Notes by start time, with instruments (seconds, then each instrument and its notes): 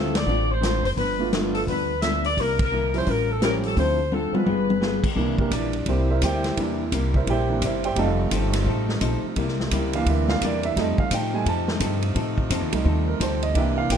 Already playing: upright bass D2, hollow-body jazz guitar D3 A3 C4 F4, grand piano A3 C4 E4 F4, saxophone section A4
0.15 saxophone section D5, snare, ride
0.26 upright bass A1, hollow-body jazz guitar D3 A3 C4 F4
0.51 saxophone section C5
0.61 hollow-body jazz guitar D3 A3 C4 F4, snare, closed hi-hat
0.83 upright bass F#1, saxophone section C5, open hi-hat
0.96 upright bass G1, hollow-body jazz guitar G2 F3 B3 D4, saxophone section B4, kick, open hi-hat
1.19 grand piano A3 B3 D4 F4
1.32 hollow-body jazz guitar G2 F3 B3 D4, snare, closed hi-hat
1.54 saxophone section A4, open hi-hat
1.67 upright bass D2, hollow-body jazz guitar G2 F3 B3 D4, saxophone section B4, kick, open hi-hat
2.02 hollow-body jazz guitar G2 F3 B3 D4, saxophone section E5, snare, closed hi-hat
2.24 saxophone section D5, open hi-hat
2.37 upright bass C2, hollow-body jazz guitar C3 G3 A#3 E4, saxophone section A#4, kick, open hi-hat
2.59 saxophone section A#4, kick, ride
2.71 hollow-body jazz guitar C3 G3 A#3 E4
2.94 grand piano F3 G3 C#4 E4, saxophone section C5, open hi-hat
3.05 upright bass A1, hollow-body jazz guitar A2 G3 C#4 F4, saxophone section A#4, kick, open hi-hat
3.31 saxophone section A4
3.41 hollow-body jazz guitar A2 G3 C#4 F4, grand piano F3 G3 C#4 G4, saxophone section A#4, snare, closed hi-hat
3.63 saxophone section A4, open hi-hat
3.76 upright bass D2, hollow-body jazz guitar D3 C4 F4 A4, grand piano F3 A3 C4 E4, saxophone section C5, kick, open hi-hat
4.12 hollow-body jazz guitar D3 C4 F4 A4, saxophone section A4, high tom
4.32 grand piano F3 G#3 B3 F4, saxophone section B4, muted upright bass stroke, high tom
4.45 upright bass G1, hollow-body jazz guitar G3 B3 F4 G#4, high tom
4.70 high tom
4.81 hollow-body jazz guitar G3 B3 F4 G#4, snare
5.03 muted upright bass stroke, kick, crash
5.15 upright bass C2, hollow-body jazz guitar C3 G3 A#3 E4, saxophone section C3 G3 A#3 E4, grand piano E3 A#3 D4, kick
5.38 grand piano A#3 E4 G4 A#4, kick
5.51 upright bass A#1, hollow-body jazz guitar C3 G3 A#3 E4, grand piano D4 D5, kick, hi-hat pedal, ride
5.73 ride
5.86 upright bass C2, hollow-body jazz guitar C3 G3 A#3 E4, grand piano C4 E4 G4 C5, kick, ride
6.10 grand piano E4 A#4 C5 E5
6.22 upright bass D2, hollow-body jazz guitar C3 G3 A#3 E4, grand piano G4 C5 E5 G5, kick, hi-hat pedal, ride
6.44 snare, ride
6.57 upright bass E2, hollow-body jazz guitar C3 G3 A#3, grand piano E3 A#3 D4, kick, ride
6.62 hollow-body jazz guitar E4
6.92 upright bass C2, hollow-body jazz guitar C3 G3 A#3 E4, kick, hi-hat pedal, ride
7.14 grand piano E4 A#4 C5 E5, kick
7.26 upright bass A#1, hollow-body jazz guitar C3 G3 A#3 E4, grand piano G4 G5, kick, ride
7.31 grand piano C5 E5
7.49 grand piano E3 A#3 D4
7.62 upright bass G1, hollow-body jazz guitar C3 G3 A#3 E4, grand piano E4 A#4 C5 E5, kick, hi-hat pedal, ride
7.84 grand piano G4 C5 E5 G5, ride
7.96 upright bass F1, saxophone section F3 A3 D#4, hollow-body jazz guitar F3 C4 D#4 A4, grand piano G3 A3 D#4 A4 D#5 F5 A5, kick, ride
8.31 upright bass G1, hollow-body jazz guitar F3 C4 D#4 A4, kick, hi-hat pedal, ride
8.53 snare, ride
8.64 upright bass A1, hollow-body jazz guitar F3 C4 D#4 A4, kick
8.89 snare
9.01 upright bass A#1, hollow-body jazz guitar F3 C4 D#4 A4, kick, hi-hat pedal, ride
9.23 muted upright bass stroke
9.35 upright bass C2, hollow-body jazz guitar C3 G3 A#3, saxophone section C3 G3 A#3 E4, kick, ride
9.39 hollow-body jazz guitar E4
9.48 snare
9.60 snare
9.71 upright bass C#2, hollow-body jazz guitar C3 G3 A#3 E4, kick, hi-hat pedal, ride
9.93 grand piano E3 A#3 D4 F5, ride
10.06 upright bass D2, hollow-body jazz guitar C3 G3 A#3 E4, grand piano E5, kick, ride
10.28 grand piano F5, snare
10.41 upright bass E2, hollow-body jazz guitar C3 G3 A#3, grand piano D5, kick, hi-hat pedal, ride
10.46 hollow-body jazz guitar E4
10.63 grand piano E5, ride
10.75 upright bass F2, saxophone section C3 F3 A3 D#4, hollow-body jazz guitar F3 C4 D#4 A4, grand piano G3 A3 D#4, kick, snare, ride
10.80 grand piano D#5
10.98 grand piano F5, muted upright bass stroke, kick
11.10 upright bass A2, hollow-body jazz guitar F3 C4 D#4 A4, grand piano G5, kick, hi-hat pedal, ride
11.34 grand piano G3 A3 D#4 G#5
11.45 upright bass F2, hollow-body jazz guitar F3 C4 D#4 A4, grand piano A5, kick, ride
11.68 snare
11.79 upright bass G2, hollow-body jazz guitar F3 C4 D#4 A4, kick, hi-hat pedal, ride
12.02 ride
12.14 upright bass A2, hollow-body jazz guitar F3 C4 D#4 A4, kick, ride
12.38 kick
12.50 upright bass F2, hollow-body jazz guitar F3 C4 D#4 A4, kick, hi-hat pedal, ride
12.61 upright bass D#2
12.72 upright bass C2, grand piano G3 A3 D#4, ride
12.84 upright bass D#2, hollow-body jazz guitar F3 C4 D#4 A4, kick
13.08 grand piano A#4
13.20 upright bass D2, hollow-body jazz guitar F3 C4 D#4 A4, grand piano C5, kick, hi-hat pedal, ride
13.42 grand piano D#5, ride
13.53 upright bass C2, hollow-body jazz guitar C3 A#3, grand piano E3 A#3 D4 D#5, saxophone section G3 A#3 E4, kick, ride
13.57 hollow-body jazz guitar E4 G4, grand piano E5
13.78 grand piano F5
13.90 upright bass A1, hollow-body jazz guitar C3 A#3 E4 G4, grand piano G5, kick, hi-hat pedal, ride